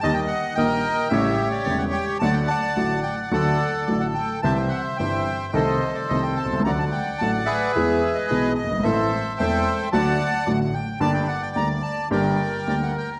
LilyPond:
<<
  \new Staff \with { instrumentName = "Bandoneon" } { \time 4/4 \key d \phrygian \tempo 4 = 109 << { a''16 g''16 fis''8 g''4 e''8. d''16 d''16 fis''16 g''8 | a''16 g''16 a''4 g''8 fis''4 d''16 fis''16 g''8 | a''16 g''16 fis''8 g''4 ees''8. d''16 ees''16 g''16 a''8 | bes''16 a''16 g''8 a''8 e''4~ e''16 ees''16 ees''8 ees''8 |
e''4 g''4 a''4 d''16 fis''16 g''8 | a''16 g''16 fis''16 g''16 bes''8 a''8 g''4 d''16 fis''16 g''8 | } \\ { ees''4 <bes' ees''>4 <g' cis''>2 | <d'' fis''>8 <d'' fis''>4. <a' d''>2 | <c'' e''>4 <c'' e''>4 <a' c''>2 | <d'' fis''>4. <aes' b'>2 r8 |
<a' c''>4 <c'' e''>4 <d'' fis''>2 | d''2 <bes' d''>2 | } >> }
  \new Staff \with { instrumentName = "Upright piano" } { \clef bass \time 4/4 \key d \phrygian <ees, ees g bes g'>8 r8 <bes,, bes, ees g bes g'>8 r8 <a,, a, cis g a e'>8 r8 <e,, e, cis g a e'>8 r8 | <d, d fis a fis'>8 r8 <a,, a, d fis a fis'>8 r8 <d, d fis a fis'>8 r8 <a,, a, d fis a fis'>8 r8 | <c, c e g c' g'>8 r8 <g,, g, e g c' g'>8 r8 <c, c ees a c' a'>8 r8 <c, c ees a c' a'>8 r32 b,,32 c,32 cis,32 | <d, d fis a d' a'>8 r8 <a,, a, fis a d' a'>8 r8 <e, e gis b gis'>8 r8 <b,, b, e gis b gis'>8 r32 fis,,32 g,,32 gis,,32 |
<a,, a, e a c' a'>8 r8 <e,, e, e a c' a'>8 r8 <d, d fis a fis'>8 r8 <a,, a, d fis a fis'>8 r8 | <g,, g, d g bes g'>8 r8 <d, d g bes g'>8 r8 <g,, g, d g bes g'>8 r8 <d, d g bes g'>8 r8 | }
>>